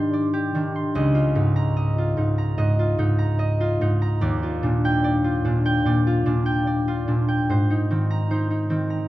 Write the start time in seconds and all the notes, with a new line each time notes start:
Already playing: G#2 D#3 D4 G4 D5 C6
0.13 D5
0.33 G4
0.55 D#3 D4
0.76 C6
0.95 C#2 D#5
1.15 F4
1.35 G#2 D#4
1.56 A#5
1.76 D#5
1.98 F4
2.17 G#2 D#4
2.38 A#5
2.58 G#2 D#5
2.79 F4
2.98 G#2 D#4
3.19 A#5
3.39 D#5
3.60 F4
3.81 G#2 D#4
4.02 A#5
4.21 D#2 D5
4.43 F4
4.63 A#2 D4
4.85 G5
5.04 D5
5.24 F4
5.45 A#2 D4
5.66 G5
5.85 A#2 D5
6.07 F4
6.26 A#2 D4
6.46 G5
6.67 D5
6.88 F4
7.08 A#2 D4
7.28 G5
7.49 G#2 C5
7.70 D#4
7.91 D#3 C4
8.10 A#5
8.31 D#4 C5
8.51 D#4
8.70 D#3 C4
8.90 A#5